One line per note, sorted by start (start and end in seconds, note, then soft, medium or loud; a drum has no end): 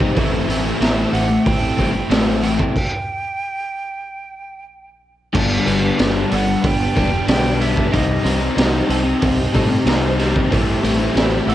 0.00 0.14 C3 loud
0.00 0.14 C3 medium
0.00 0.16 G3 medium
0.00 0.17 G3 medium
0.00 0.14 C4 medium
0.00 0.14 D#4 medium
0.00 0.15 D#4 medium
0.00 0.17 G4 medium
0.00 2.70 G4 medium
0.00 0.12 C5 medium
0.00 0.13 D#5 medium
0.00 0.11 A5 loud
0.00 kick loud
0.16 0.40 A1 loud
0.16 0.79 A2 medium
0.16 0.47 E3 loud
0.16 0.48 A3 medium
0.16 0.48 C4 loud
0.16 0.49 E4 medium
0.16 0.62 A4 loud
0.16 2.73 C5 medium
0.16 2.73 E5 medium
0.16 2.73 A5 loud
0.16 kick loud
0.16 open hi-hat medium
0.48 0.71 A1 loud
0.48 0.78 A2 loud
0.48 0.80 E3 medium
0.48 0.65 A3 medium
0.48 0.64 C4 medium
0.48 0.63 E4 medium
0.48 open hi-hat medium
0.64 0.80 A3 medium
0.64 0.81 C4 medium
0.64 0.81 E4 medium
0.64 0.80 A4 medium
0.80 1.04 A1 medium
0.80 1.45 A2 medium
0.80 1.11 E3 medium
0.80 1.12 A3 loud
0.80 1.12 C4 loud
0.80 1.13 E4 loud
0.80 1.12 A4 loud
0.80 snare loud
0.80 open hi-hat medium
1.12 1.36 A1 medium
1.12 1.45 A2 medium
1.12 1.29 E3 medium
1.12 1.29 A3 medium
1.12 1.28 C4 loud
1.12 1.28 E4 medium
1.12 2.75 G4 medium
1.12 1.28 A4 medium
1.12 1.46 F#5 loud
1.12 open hi-hat medium
1.29 muted overdriven electric guitar stroke medium
1.44 1.70 A1 loud
1.44 1.77 A2 loud
1.44 1.78 E3 loud
1.44 2.09 A3 medium
1.44 1.78 A3 loud
1.44 1.78 C4 loud
1.44 1.79 E4 loud
1.44 2.10 G5 loud
1.44 kick loud
1.44 open hi-hat medium
1.60 1.92 C4 medium
1.60 1.92 E4 medium
1.60 1.92 A4 medium
1.77 2.02 G1 medium
1.77 2.09 A2 loud
1.77 1.94 E3 medium
1.77 1.93 A3 medium
1.77 1.93 C4 medium
1.77 1.93 E4 medium
1.77 kick medium
1.77 open hi-hat medium
1.94 muted overdriven electric guitar stroke medium
2.10 2.57 A1 loud
2.10 2.73 A2 medium
2.10 2.41 E3 loud
2.10 2.41 A3 loud
2.10 2.42 C4 loud
2.10 2.43 E4 medium
2.10 2.43 A4 loud
2.10 snare loud
2.10 open hi-hat medium
2.41 2.73 A2 medium
2.41 2.73 E3 medium
2.41 2.58 A3 medium
2.41 2.58 C4 medium
2.41 2.56 E4 medium
2.41 2.55 A4 medium
2.41 4.64 G5 loud
2.41 open hi-hat medium
2.56 2.73 A3 medium
2.56 2.73 C4 medium
2.56 2.72 E4 medium
2.56 2.72 A4 medium
2.56 kick medium
2.76 kick loud
2.76 crash medium
5.33 5.57 G1 medium
5.33 5.97 G2 medium
5.33 5.64 D3 loud
5.33 5.66 G3 medium
5.33 5.65 B3 medium
5.33 5.66 D4 loud
5.33 11.55 G4 medium
5.33 7.90 B4 medium
5.33 7.91 D5 medium
5.33 7.90 A5 loud
5.33 kick loud
5.33 crash loud
5.65 5.90 G1 loud
5.65 5.97 G2 medium
5.65 5.98 D3 medium
5.65 5.83 G3 medium
5.65 5.82 B3 medium
5.65 5.80 D4 medium
5.65 open hi-hat medium
5.81 5.98 G3 medium
5.81 5.98 B3 medium
5.81 5.99 D4 medium
5.98 6.22 G1 medium
5.98 6.63 G2 loud
5.98 6.29 D3 loud
5.98 6.30 G3 loud
5.98 6.30 B3 loud
5.98 6.31 D4 loud
5.98 snare loud
5.98 open hi-hat medium
6.30 6.55 G1 loud
6.30 6.61 G2 medium
6.30 6.46 D3 medium
6.30 6.46 G3 medium
6.30 6.45 B3 medium
6.30 6.45 D4 loud
6.30 7.95 A4 medium
6.30 6.68 F#5 loud
6.30 open hi-hat medium
6.46 muted overdriven electric guitar stroke medium
6.63 6.86 G1 loud
6.63 6.94 G2 loud
6.63 6.94 D3 loud
6.63 6.96 G3 loud
6.63 6.96 B3 loud
6.63 7.28 B3 medium
6.63 6.96 D4 loud
6.63 7.28 G5 loud
6.63 kick loud
6.63 open hi-hat medium
6.95 7.19 E1 medium
6.95 7.27 G2 loud
6.95 7.11 D3 medium
6.95 7.11 G3 medium
6.95 7.11 B3 medium
6.95 7.10 D4 medium
6.95 kick medium
6.95 open hi-hat medium
7.11 muted overdriven electric guitar stroke medium
7.27 7.74 B1 loud
7.27 7.90 G2 medium
7.27 7.58 D3 medium
7.27 7.60 G3 loud
7.27 7.59 B3 loud
7.27 7.60 D4 loud
7.27 7.63 G5 loud
7.27 snare loud
7.27 open hi-hat loud
7.59 7.91 G2 medium
7.59 7.90 D3 medium
7.59 7.77 G3 medium
7.59 7.75 B3 medium
7.59 7.74 D4 medium
7.59 7.94 E5 loud
7.59 open hi-hat medium
7.75 7.92 G3 medium
7.75 7.91 B3 medium
7.75 7.90 D4 medium
7.75 kick medium
7.92 8.16 C2 loud
7.92 8.22 C3 medium
7.92 8.24 G3 medium
7.92 8.25 C4 medium
7.92 8.24 D#4 medium
7.92 11.55 C5 medium
7.92 8.57 D#5 loud
7.92 10.50 D#5 medium
7.92 11.55 A5 loud
7.92 kick loud
7.92 open hi-hat loud
8.24 8.48 C2 loud
8.24 8.54 C3 medium
8.24 8.41 G3 medium
8.24 8.40 C4 medium
8.24 8.38 D#4 medium
8.24 open hi-hat medium
8.39 8.56 G3 medium
8.39 8.57 C4 medium
8.39 8.56 D#4 medium
8.55 8.80 C2 medium
8.55 8.87 C3 medium
8.55 8.88 G3 medium
8.55 8.89 C4 loud
8.55 8.89 D#4 loud
8.55 snare loud
8.55 open hi-hat medium
8.88 9.13 C2 loud
8.88 9.37 C3 medium
8.88 9.05 G3 loud
8.88 9.03 C4 medium
8.88 9.03 D#4 loud
8.88 10.52 A4 medium
8.88 open hi-hat medium
9.04 muted overdriven electric guitar stroke medium
9.22 9.45 C2 loud
9.22 9.52 C3 loud
9.22 9.54 G3 loud
9.22 9.54 C4 loud
9.22 9.86 C4 medium
9.22 9.54 D#4 loud
9.22 kick loud
9.22 open hi-hat medium
9.53 9.78 A2 medium
9.53 9.84 C3 medium
9.53 9.71 G3 medium
9.53 9.69 C4 medium
9.53 9.69 D#4 medium
9.53 kick medium
9.53 open hi-hat medium
9.70 muted overdriven electric guitar stroke medium
9.86 10.33 C2 loud
9.86 10.17 C3 medium
9.86 10.18 G3 loud
9.86 10.19 C4 loud
9.86 10.19 D#4 loud
9.86 snare loud
9.86 open hi-hat loud
10.19 10.49 C3 medium
10.19 10.36 G3 medium
10.19 10.34 C4 medium
10.19 10.34 D#4 medium
10.19 snare soft
10.19 open hi-hat medium
10.35 10.51 G3 medium
10.35 10.49 C4 medium
10.35 10.49 D#4 medium
10.35 kick loud
10.50 10.75 A1 loud
10.50 11.13 A2 medium
10.50 10.82 E3 medium
10.50 11.55 G3 medium
10.50 10.82 A3 loud
10.50 10.83 C4 medium
10.50 10.84 E4 medium
10.50 11.55 E5 medium
10.50 kick loud
10.50 open hi-hat medium
10.82 11.07 A1 loud
10.82 11.14 A2 medium
10.82 11.15 E3 medium
10.82 11.00 A3 medium
10.82 10.99 C4 medium
10.82 10.99 E4 loud
10.82 open hi-hat medium
10.99 11.14 A3 medium
10.99 11.15 C4 medium
10.99 11.16 E4 medium
11.15 11.39 A1 medium
11.15 11.55 A2 loud
11.15 11.47 E3 loud
11.15 11.47 A3 medium
11.15 11.48 C4 loud
11.15 11.49 E4 loud
11.15 snare loud
11.15 open hi-hat medium
11.47 11.55 A1 loud
11.47 11.55 A2 medium
11.47 11.55 E3 medium
11.47 11.55 A3 medium
11.47 11.55 C4 medium
11.47 11.55 E4 medium
11.47 11.55 A4 medium
11.47 11.55 F#5 loud
11.47 open hi-hat medium